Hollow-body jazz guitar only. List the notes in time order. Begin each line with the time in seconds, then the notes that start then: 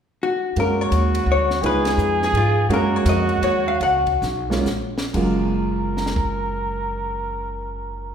0.23 F#4
0.60 A#4
0.81 C#5
1.32 C#5
1.66 B4
1.89 G#4
2.24 G#4
2.37 F4
2.74 A#4
2.96 C#5
3.09 D#5
3.44 C#5
3.68 F5
3.83 F#5